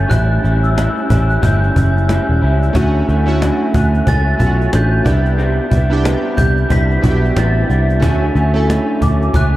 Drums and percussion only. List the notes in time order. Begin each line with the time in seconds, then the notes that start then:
0.11 cajon bass
0.44 cajon slap
0.64 cajon slap
0.78 cajon slap
0.97 cajon slap
1.10 cajon bass
1.30 cajon slap
1.43 cajon bass
1.63 cajon slap
1.76 cajon bass
1.97 cajon slap
2.09 cajon slap
2.62 cajon slap
2.75 cajon bass
3.09 cajon slap
3.28 cajon slap
3.42 cajon slap
3.74 cajon bass
3.94 cajon slap
4.07 cajon bass
4.27 cajon slap
4.40 cajon bass
4.61 cajon slap
4.73 cajon slap
5.06 cajon bass, cajon slap
5.25 cajon slap
5.39 cajon slap
5.71 cajon bass
5.91 cajon slap
6.05 cajon slap
6.38 cajon bass
6.57 cajon slap
6.70 cajon bass
6.90 cajon slap
7.04 cajon bass
7.24 cajon slap
7.37 cajon slap
7.70 cajon slap
7.89 cajon slap
8.02 cajon bass
8.35 cajon slap
8.55 cajon slap
8.70 cajon slap
9.02 cajon bass
9.22 cajon slap
9.34 cajon bass